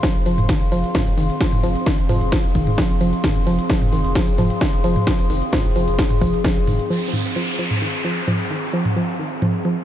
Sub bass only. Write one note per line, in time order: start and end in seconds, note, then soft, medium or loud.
0.15 0.25 F1 medium
0.26 0.37 F1 loud
0.38 0.49 F1 medium
0.61 0.71 F1 medium
0.72 0.83 F1 loud
1.07 1.17 F1 medium
1.18 1.29 F1 loud
1.52 1.63 F1 medium
1.63 1.75 F1 loud
1.98 2.09 F1 medium
2.09 2.21 F1 loud
2.21 2.32 F1 medium
2.44 2.55 F1 medium
2.55 2.67 F1 loud
2.90 3.00 F1 medium
3.01 3.13 F1 loud
3.36 3.46 F1 medium
3.47 3.58 F1 loud
3.82 3.92 F1 medium
3.92 4.04 F1 loud
4.04 4.15 F1 medium
4.27 4.38 F1 medium
4.38 4.50 F1 loud
4.73 4.83 F1 medium
4.84 4.96 F1 loud
5.19 5.29 F1 medium
5.30 5.41 F1 loud
5.65 5.75 F1 medium
5.76 5.87 F1 loud
5.87 5.98 F1 medium
6.10 6.21 F1 medium
6.21 6.33 F1 loud
6.56 6.67 F1 medium
6.67 6.79 F1 loud